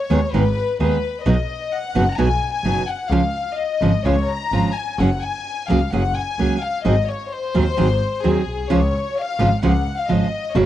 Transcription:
Already playing: C#5
0.10 D#2 D#3 G#3 B3 D#4 G#4
0.33 G#1 D#3 G#3 B3 D#4 G#4 B4
0.80 D#2 D#3 G#3 B3 D#4 G#4 B4
1.25 B1 B2 F#3 B3 D#4 F#4 D#5
1.73 F#5
1.95 F#1 B2 F#3 B3 D#4 F#4
2.12 A#5
2.18 B1 B2 F#3 B3 D#4 F#4 G#5
2.53 G#5
2.64 F#1 B2 F#3 B3 D#4 F#4
2.88 F#5
3.10 C#2 C#3 F3 G#3 C#4 F4 F5
3.57 D#5
3.81 G#1 C#3 F3 G#3 C#4 F4
4.04 C#2 C#3 F3 G#3 C#4 F4 C#5
4.28 A#5
4.52 G#1 C#3 F3 G#3 C#4 F4
4.75 G#5
4.98 F#1 F#3 A#3 C#4 G#4 F#5
5.21 G#5
5.69 C#2 F#3 A#3 C#4 G#4 F5
5.92 F#1 F#3 A#3 C#4 G#4 F#5
6.16 G#5
6.38 C#2 F#3 A#3 C#4 G#4
6.61 F5
6.85 G#1 D#3 F#3 C4 D#4 G#4 D#5
7.08 C#5
7.31 C5
7.54 D#2 D#3 F#3 C4 D#4 G#4
7.77 G#1 D#3 F#3 C4 D#4 G#4
8.23 D#2 D#3 F#3 C4 D#4 G#4
8.48 B1
8.70 C#2 C#3 F3 G#3 C#4 F4 C#5
9.17 F5
9.39 G#1 C#3 F3 G#3 C#4 F4
9.62 C#2 C#3 F3 G#3 C#4 F4 F#5
9.98 F5
10.09 G#1 C#3 F3 G#3 C#4 F4 D#5
10.55 F#1 C#3 F#3 A#3 C#4 F#4 C#5

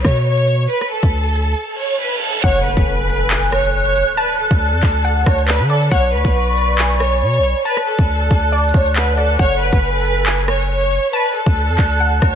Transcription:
0.04 B2 C#5, kick, cross-stick
0.16 closed hi-hat
0.26 C#5
0.38 closed hi-hat
0.48 closed hi-hat
0.69 B4, closed hi-hat
0.81 cross-stick
0.92 A4
1.03 D2, kick, closed hi-hat
1.35 closed hi-hat
1.57 reverse cymbal
1.79 C#5
2.00 B4
2.22 A4
2.44 F#1 A4 C#5 F#5 G#5 F#6, kick, closed hi-hat, impact
2.65 B4
2.77 F#1, kick, closed hi-hat
3.09 closed hi-hat
3.30 G#5, clap, closed hi-hat
3.52 C#5, cross-stick
3.64 closed hi-hat
3.74 C#5
3.85 closed hi-hat
3.96 closed hi-hat
4.17 B4 D5 A5, closed hi-hat
4.39 A4
4.51 D2, kick, closed hi-hat
4.73 F2
4.83 D2, kick, clap, closed hi-hat
5.04 F#5, closed hi-hat
5.26 D2 C#5, kick, cross-stick
5.38 closed hi-hat
5.48 B4, clap
5.60 D3
5.69 A4 D5, closed hi-hat
5.82 closed hi-hat
5.91 B1 C#5 D5 F#5 B5 C#6, kick, closed hi-hat
6.13 D2 B4
6.25 B1, kick, closed hi-hat
6.57 closed hi-hat
6.78 G#5, clap, closed hi-hat
7.00 C#5, cross-stick
7.12 closed hi-hat
7.22 B2 C#5
7.33 closed hi-hat
7.39 B1
7.44 closed hi-hat
7.65 B4 D5 A5 F#6, closed hi-hat
7.77 cross-stick
7.87 A4
7.99 D2, kick, closed hi-hat
8.31 D2, kick, closed hi-hat
8.52 D5, closed hi-hat
8.58 closed hi-hat
8.64 closed hi-hat
8.69 closed hi-hat
8.74 D2 C#5, kick
8.86 closed hi-hat
8.96 B4 F#5, clap
9.17 A4 D5, closed hi-hat
9.29 closed hi-hat
9.39 F#1 A4 C#5 F#5 G#5, kick, closed hi-hat
9.61 B4
9.73 F#1, kick, closed hi-hat
10.05 closed hi-hat
10.26 G#5, clap, closed hi-hat
10.48 C#5, cross-stick
10.60 closed hi-hat
10.70 C#5
10.81 closed hi-hat
10.91 closed hi-hat
11.13 B4 D5 A5 F#6, closed hi-hat
11.35 A4
11.46 D2, kick, closed hi-hat
11.68 F2
11.78 D2, kick, clap, closed hi-hat
12.00 F#5, closed hi-hat
12.22 D2 C#5, kick, cross-stick

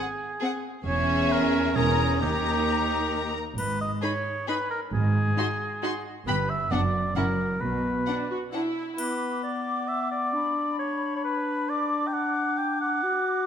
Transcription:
Already playing: G#4
0.40 C4 G#4 F#5
0.85 E1 E2 C#4 G#4 C#5 E5
1.32 A#4
1.75 E1 E2 C#4 G#4 A#4 A#5
2.20 D#2 D#4 G4 A#4 A#5
3.57 G#1 G#2 B4, triangle
3.81 D#5
4.02 D#4 G#4 C#5 B5
4.47 D#4 G#4 B4 B5
4.70 A#4
4.92 G#1 G#2 G#4
5.37 D#4 F#4 C6
5.83 D#4 F#4 C6
6.27 G1 G2 B3 G4 B4 B5
6.50 E5
6.71 F#1 F#2 B3 D4 D5 F#5
7.15 F#1 F#2 C#4 E4 A#4 F#5
7.61 B1 B2 B4
8.07 D4 F#5
8.31 F#4
8.53 D4 E4 F#5
8.98 B3 B4 D6, triangle
9.43 D5
9.88 E5
10.11 D5
10.33 D4 B5
10.79 C#5
11.16 C#5
11.24 B4
11.68 D5 D6
12.07 G5
12.13 F#5
12.58 G5
12.81 F#5
13.03 F#4

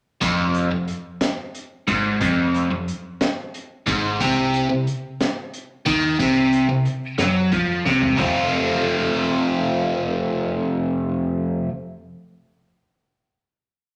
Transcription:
0.21 F1 F2, kick, closed hi-hat, shaker
0.54 closed hi-hat, shaker
0.71 F1 F2
0.88 closed hi-hat, shaker
1.21 snare, closed hi-hat, shaker
1.55 closed hi-hat
1.88 G#1 G#2, kick, closed hi-hat
2.21 F1 F2, kick, closed hi-hat, shaker
2.54 closed hi-hat, shaker
2.70 F1 F2
2.88 closed hi-hat, shaker
3.21 snare, closed hi-hat, shaker
3.54 closed hi-hat
3.86 G#1 G#2, kick, closed hi-hat
4.20 C2 C3, kick, closed hi-hat, shaker
4.54 closed hi-hat, shaker
4.69 C2 C3
4.87 closed hi-hat, shaker
5.21 snare, closed hi-hat, shaker
5.54 closed hi-hat
5.86 D#2 D#3, kick, closed hi-hat
6.19 C2 C3, kick, closed hi-hat, shaker
6.37 shaker
6.53 closed hi-hat, shaker
6.69 C2 C3
6.85 closed hi-hat
7.03 shaker
7.18 F#2 F#3, snare, closed hi-hat, shaker
7.52 F2 F3, kick, closed hi-hat
7.69 shaker
7.85 C2 C3, snare
8.02 floor tom
8.17 F1 F2 C3 F3 A3 C4, kick, floor tom, crash, shaker
8.21 F4

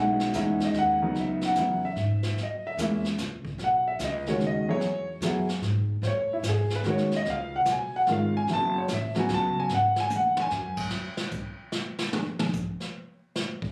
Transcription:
Already playing: B1 G#3 C#4 D#4 E4
0.00 F#5
0.20 snare
0.33 E2 G#3 C#4 D#4 E4, snare, hi-hat pedal
0.60 snare
0.65 D#5
0.74 D#2, snare
0.79 F#5
1.02 C#3 F#3 B3 D#4
1.15 C#2, brush sweep, snare
1.20 E5
1.41 F#5, snare
1.55 E2 C#3 F#3 B3 E4, snare, hi-hat pedal
1.85 E5
1.96 G#2, snare
2.23 snare
2.36 F#2, brush sweep, snare
2.43 D#5
2.67 E5
2.77 E2 G#3 A#3 C#4 E4, snare, hi-hat pedal
3.05 snare
3.18 C#2, snare, hi-hat pedal
3.44 muted upright bass stroke, kick
3.58 B1, brush sweep, snare
3.64 F#5
3.88 E5
3.99 C#2, snare, hi-hat pedal
4.04 D#5
4.26 D#3 G#3 C#4 F#4 C#5, snare
4.39 D#2, snare
4.47 D#5
4.69 F#3 B3 E4 G#4 C#5
4.80 E2, brush sweep, snare
5.21 F#2 F#3 B3 E4 G#4, snare, hi-hat pedal
5.48 snare
5.61 G#2, snare
6.02 A2 C5, brush sweep, snare
6.07 C#5
6.33 E4
6.43 G#2, snare, hi-hat pedal
6.49 G#4
6.70 snare
6.76 B4
6.84 D#2 D#3 G#3 C#4 F#4, snare
6.90 C#5
6.98 snare
7.11 snare
7.16 D#5
7.25 C#2, brush sweep, snare
7.30 F5
7.56 F#5
7.65 B1, snare, hi-hat pedal
7.72 G#5
7.96 F#5
8.07 G#1 D#3 G#3 C#4 F4, snare
8.12 F5
8.37 G#5
8.47 F#1 C#3 F#3 B3 E4, brush sweep, snare
8.53 A5
8.78 C#5
8.88 A1, snare, hi-hat pedal
8.94 E5
9.14 C#3 F#3 B3 F#4, snare
9.19 G#5
9.29 C#2, snare
9.34 A5
9.56 G#5, muted upright bass stroke
9.69 G#2, snare
9.74 F#5
9.96 G#5, snare
10.10 E2, hi-hat pedal, high tom
10.16 F#5
10.37 muted upright bass stroke, mid tom
10.42 G#5
10.50 F#2, snare
10.77 kick, crash
10.90 snare
11.17 snare
11.31 kick, hi-hat pedal
11.72 snare
11.99 snare
12.13 mid tom
12.39 mid tom
12.53 kick, hi-hat pedal
12.80 snare
13.36 snare
13.62 kick

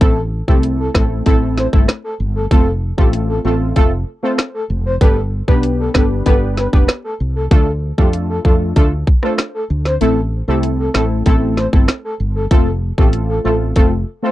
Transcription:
0.01 A1 A3 C4 E4 A4, kick, closed hi-hat
0.48 C2 A3 C4 E4 G4 A4, kick
0.63 closed hi-hat
0.80 A4
0.94 A1 A3 C4 E4 A4, kick, cross-stick, snare
1.26 A1 A3 C4 E4 A4, kick, closed hi-hat
1.57 C5, snare
1.73 G1 A3 C4 E4 A4, kick
1.88 cross-stick, snare, closed hi-hat
2.04 A4
2.20 G1
2.35 A4
2.51 F1 A3 C4 F4 A4, kick, closed hi-hat
2.98 A1 A3 C4 F4 G4 A4, kick
3.13 closed hi-hat
3.29 A4
3.44 A1 A3 C4 F4 A4
3.76 F1 A3 C4 F4 A4, kick, closed hi-hat
4.22 A3 C4 F4 A4 C5
4.38 cross-stick, snare, closed hi-hat
4.54 A4
4.70 F1
4.86 C5
5.01 G1 B3 D4 G4 A4 B4, kick, closed hi-hat
5.48 B1 B3 D4 G4 B4, kick
5.63 closed hi-hat
5.80 A4
5.94 G1 B3 D4 G4 A4 B4, kick, cross-stick, snare
6.26 G1 B3 D4 G4 A4 B4, kick, closed hi-hat
6.57 B4, snare
6.73 F1 B3 D4 G4 B4, kick
6.88 cross-stick, snare, closed hi-hat
7.04 A4
7.20 C2
7.36 A4
7.51 D2 A3 D4 F4 A4, kick, closed hi-hat
7.98 F2 A3 D4 F4 G4 A4, kick
8.13 closed hi-hat
8.30 A4
8.45 F2 A3 D4 F4 A4, kick
8.76 D2 A3 D4 F4 A4, kick, closed hi-hat
9.07 kick
9.23 A3 D4 F4 A4 C5, cross-stick
9.38 cross-stick, snare, closed hi-hat
9.54 A4
9.70 D2
9.85 C5, snare
10.01 A1 A3 C4 E4 A4, closed hi-hat
10.48 C2 A3 C4 E4 G4 A4
10.63 closed hi-hat
10.79 A4
10.94 A1 A3 C4 E4 A4, cross-stick, snare
11.26 A1 A3 C4 E4 A4, kick, closed hi-hat
11.57 C5, snare
11.73 G1 A3 C4 E4 A4, kick
11.88 cross-stick, snare, closed hi-hat
12.04 A4
12.20 G1
12.35 A4
12.51 F1 A3 C4 F4 A4, kick, closed hi-hat
12.98 A1 A3 C4 F4 G4 A4, kick
13.13 closed hi-hat
13.29 A4
13.44 A1 A3 C4 F4 A4
13.76 F1 A3 C4 F4 A4, kick, closed hi-hat
14.23 A3 C4 F4 A4 C5

